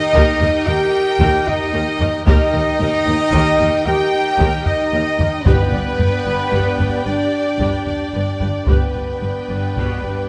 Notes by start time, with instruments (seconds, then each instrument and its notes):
Already playing: french horn section D#4, string section D#4 G4 A#4 D#5, trumpet section D#5, violin section D#5 G5, flute D#5
0.14 cello section D#2, double bass section D#2, viola section G4 A#4, taiko
0.40 double bass section D#2, cello section D#2, viola section A#4 D#5, taiko low
0.67 double bass section D#2, cello section D#2, french horn section G4, viola section A#4, trumpet section G5, flute G5, violin section G5
1.20 double bass section D#2, cello section D#2, viola section G4 A#4, taiko
1.46 french horn section D#4, flute D#5, trumpet section D#5, violin section D#5, taiko low
1.73 double bass section D#2, cello section D#2, viola section A#4
1.99 double bass section D#2, cello section D#2, viola section A#4 D#5, taiko low
2.26 cello section D#2, double bass section D#2, string section D#4 G4 A#4 D#5, french horn section D#4, viola section G4 A#4, flute D#5, trumpet section D#5, violin section D#5 G5, taiko
2.53 double bass section D#2, cello section D#2, viola section A#4 D#5
2.79 double bass section D#2, cello section D#2, viola section A#4, taiko low
3.06 double bass section D#2, cello section D#2, viola section A#4 D#5
3.32 double bass section D#2, cello section D#2, viola section G4 A#4, taiko
3.59 double bass section D#2, cello section D#2, viola section A#4 D#5, taiko low
3.86 double bass section D#2, cello section D#2, french horn section G4, viola section A#4, flute G5, trumpet section G5, violin section G5
4.39 double bass section D#2, cello section D#2, viola section G4 A#4, taiko
4.65 french horn section D#4, trumpet section D#5, flute D#5, violin section D#5, taiko low
4.92 cello section D#2, double bass section D#2, viola section A#4
5.19 double bass section D#2, cello section D#2, viola section A#4 D#5, taiko low
5.45 double bass section G1, timpani G2, cello section G2, french horn section B3, string section D4 G4 D5 G5, viola section G4 B4, violin section B4 G5, flute B4, trumpet section B4, taiko
5.73 double bass section G1, cello section G2, viola section B4 D5
5.99 double bass section G1, cello section G2, viola section B4, taiko low
6.25 double bass section G1, cello section G2, viola section B4 D5
6.52 double bass section G1, cello section G2, viola section G4 B4, taiko
6.78 double bass section G1, cello section G2, viola section B4 D5, taiko low
7.05 double bass section G1, cello section G2, french horn section D4, viola section B4, violin section D5, flute D5, trumpet section D5
7.59 double bass section G1, cello section G2, viola section G4 B4, taiko
7.86 french horn section D4, trumpet section D5, violin section D5, flute D5, taiko low
8.13 double bass section G1, cello section G2, viola section B4
8.40 double bass section G1, cello section G2, viola section B4 D5, taiko low
8.67 double bass section G1, cello section G2, french horn section B3, string section D4 G4 D5 G5, viola section G4 B4, violin section B4 G5, trumpet section B4, flute B4, taiko
8.95 double bass section G1, cello section G2, viola section B4 D5
9.21 double bass section G1, cello section G2, viola section B4
9.49 double bass section G1, cello section G2, viola section B4 D5
9.76 double bass section G1, cello section B2, viola section G4 B4, taiko
10.04 double bass section G1, cello section G2, viola section B4 D5